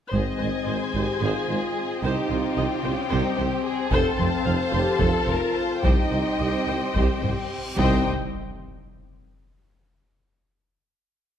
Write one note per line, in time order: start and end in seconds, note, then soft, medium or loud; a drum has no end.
0.11 0.20 G#1 soft
0.11 0.23 G#1 medium
0.11 0.21 G#2 soft
0.11 0.90 C4 medium
0.11 5.81 C4 soft
0.11 0.37 G#4 soft
0.11 1.99 G#4 soft
0.11 0.37 C5 soft
0.11 5.81 C5 soft
0.11 3.88 D#5 soft
0.11 0.64 D#5 soft
0.11 1.99 G#5 soft
0.11 taiko soft
0.39 0.48 G#1 soft
0.39 0.51 G#1 soft
0.39 0.48 G#2 soft
0.39 0.47 C5 soft
0.66 0.74 G#1 soft
0.66 0.78 G#1 soft
0.66 0.75 G#2 soft
0.66 1.21 C5 soft
0.66 0.77 C5 soft
0.66 0.76 D#5 soft
0.94 1.02 G#1 soft
0.94 1.06 G#1 soft
0.94 1.02 G#2 soft
0.94 1.22 G4 medium
0.94 1.04 C5 soft
0.94 taiko soft
1.21 1.29 G#1 medium
1.21 1.33 G#1 medium
1.21 1.29 G#2 medium
1.21 2.03 F4 medium
1.21 1.47 G#4 soft
1.21 2.03 G#4 soft
1.21 1.47 C5 soft
1.48 1.59 G#1 soft
1.48 1.57 G#1 soft
1.48 1.57 G#2 soft
1.48 1.57 C5 soft
2.02 2.14 C2 medium
2.02 2.11 C2 medium
2.02 2.11 C3 medium
2.02 2.82 D#4 medium
2.02 3.92 G4 medium
2.02 2.28 G4 medium
2.02 2.30 G4 soft
2.02 2.28 C5 medium
2.02 3.92 G5 soft
2.29 2.41 C2 soft
2.29 2.38 C2 soft
2.29 2.38 C3 soft
2.29 3.11 F4 soft
2.29 2.37 C5 soft
2.56 2.65 C2 soft
2.56 2.68 C2 soft
2.56 2.64 C3 soft
2.56 2.66 C5 soft
2.56 2.65 D#5 medium
2.81 2.95 C2 soft
2.81 2.93 C2 soft
2.81 2.92 C3 soft
2.81 3.10 C#4 medium
2.81 2.92 C5 soft
3.08 3.22 C2 medium
3.08 3.20 C2 medium
3.08 3.19 C3 medium
3.08 3.89 C4 medium
3.08 3.38 D#4 medium
3.08 3.36 G4 medium
3.08 3.36 C5 medium
3.37 3.49 C2 soft
3.37 3.47 C2 soft
3.37 3.46 C3 medium
3.37 3.65 G4 medium
3.37 3.45 C5 medium
3.64 3.91 G#4 medium
3.90 4.02 F1 medium
3.90 4.00 F1 medium
3.90 4.00 F2 medium
3.90 4.71 C4 medium
3.90 4.17 A4 medium
3.90 5.84 A4 medium
3.90 4.19 A4 medium
3.90 4.17 C5 medium
3.90 5.84 F5 medium
3.90 5.80 A5 medium
3.90 taiko medium
4.18 4.30 F1 soft
4.18 4.27 F1 soft
4.18 4.27 F2 medium
4.18 4.26 C5 soft
4.18 5.01 C5 medium
4.45 4.56 F1 medium
4.45 4.54 F1 medium
4.45 4.54 F2 medium
4.45 4.54 C5 soft
4.45 4.54 F5 medium
4.72 4.84 F1 medium
4.72 4.82 F1 medium
4.72 4.81 F2 soft
4.72 5.01 G4 medium
4.72 4.80 C5 medium
5.00 5.11 F1 medium
5.00 5.09 F1 medium
5.00 5.08 F2 medium
5.00 5.83 F4 medium
5.00 5.26 A4 medium
5.00 5.28 A4 medium
5.00 5.24 C5 medium
5.00 taiko medium
5.26 5.38 F1 soft
5.26 5.36 F1 soft
5.26 5.36 F2 medium
5.26 5.56 A#4 medium
5.26 5.34 C5 soft
5.55 5.83 C5 medium
5.82 5.94 C2 medium
5.82 5.91 C2 medium
5.82 5.92 C2 medium
5.82 7.74 C4 medium
5.82 6.93 D#4 medium
5.82 6.09 G4 medium
5.82 7.75 G4 medium
5.82 6.09 C5 medium
5.82 7.74 C5 medium
5.82 7.51 D#5 medium
5.82 7.54 G5 soft
5.82 7.75 G5 medium
5.82 taiko medium
5.82 reverse cymbal medium
6.10 6.19 C2 soft
6.10 6.23 C2 soft
6.10 6.20 C2 soft
6.10 6.19 C5 soft
6.38 6.47 C2 soft
6.38 6.51 C2 soft
6.38 6.49 C2 soft
6.38 6.47 C5 soft
6.38 6.46 D#5 soft
6.67 6.75 C2 soft
6.67 6.76 C2 soft
6.67 6.79 C2 soft
6.67 6.75 C5 soft
6.94 7.03 C2 medium
6.94 7.07 C2 medium
6.94 7.04 C2 medium
6.94 7.20 G4 medium
6.94 7.21 C5 soft
6.94 taiko medium
7.22 7.34 C2 soft
7.22 7.31 C2 soft
7.22 7.30 C5 medium
7.22 taiko low-mid medium
7.76 8.08 C2 medium
7.76 8.01 C2 medium
7.76 8.09 C2 medium
7.76 8.02 C4 medium
7.76 8.08 D#4 medium
7.76 8.08 G4 medium
7.76 8.07 C5 medium
7.76 8.09 C5 medium
7.76 8.09 D#5 medium
7.76 8.08 G5 medium
7.76 8.09 G5 medium
7.76 taiko medium
7.76 impact medium